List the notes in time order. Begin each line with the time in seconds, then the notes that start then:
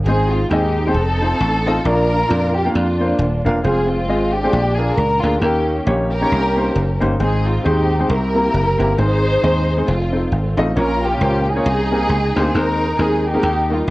0.06 G#1 G#2 G#3 C4 D#4 G#4 C5
0.30 F4
0.50 D#2 G#3 C4 D#4 G4 G#4 D#5
0.86 G#3 C4 D#4 G#4 C5
0.94 F1 C4 D#4 A4
1.21 C4 D#4 F4 A4 C5
1.40 A1
1.66 C4 D#4 F4 A4 D#5
1.85 A#1 A#2 A#3 D4 F4 A#4 D5
2.29 F2 A#3 D4 F4 A#4 D5
2.55 G4
2.65 A#3 D4 F4 A#4 F5
2.72 F2 A#3 D4 F4
3.00 A#3 D4 F4 A#4 C5
3.19 D#1
3.45 E1 A#3 D4 F4 A#4 F5
3.62 F1 G#3 C4 F4 G#4 C5
3.88 G#3 C4 F4
4.09 G#1 G#3 C4 F4 G#4 D#5
4.33 D4 G4
4.44 G#3 C4 F4 G#4 C5
4.52 A#1 A#2
4.76 A#3 D4 F4 G#4 A#4
4.95 C#2 A#4
5.21 D2 A#3 D4 F4 G#4 A#4
5.41 D#2 D#3 A#3 C#4 D#4 G4 A#4
5.86 A#1 A#3 C#4 D#4 G4 C#5
6.11 C#4 G4 A#4
6.21 A#3 C#4 D#4 G4 C#5
6.32 C2
6.56 A#3 C#4 D#4 G4 C5
6.76 F#1
7.01 G1 A#3 C#4 D#4 G4 C5
7.20 G#1 G#2 G#3 C4 D#4 G#4 C5
7.48 F4
7.64 D#2 G#3 C4 D#4 G4 G#4 C5
7.99 G#3 C4 D#4 G#4 C5
8.08 C2 C3 E4 G4 A#4
8.34 A#3 C4 E4 G4 A#4
8.54 F#1
8.78 G1 A#3 C4 E4 G4 A#4
8.97 G#1 G#2 G#3 C4 D#4 G#4 C5
9.42 D#2 G#3 C4 D#4 G#4 D#5
9.77 G#3 C4 D#4 G#4 C5
9.87 F1 A3 C4 F4
10.12 C4 D#4 F4 A4 C5
10.32 G#1
10.57 A1 C4 D#4 F4 A4 D#5
10.76 A#1 A#2 A#3 C#4 F4 A#4 C#5
11.03 A#3 C#4 G4
11.21 C#2 A#3 C#4 F4 A#4 C5
11.49 D#4 G#4
11.55 A#3 C#4 F4 A#4 C#5
11.65 C2 C3
11.91 A#3 C4 D#4 G4 A#4
12.09 C#2
12.36 D2 A#3 C4 D#4 G4 C5
12.54 D#2 D#3 G#3 C4 D#4 G#4 A#4 C5
12.99 D#2 G#3 C4 D#4 G#4 A#4
13.25 A#3 D#4 G4
13.34 G#3 C4 D#4 G#4 A#4
13.43 D#2 D#3
13.69 G3 A#3 D#4 F4 G4 A#4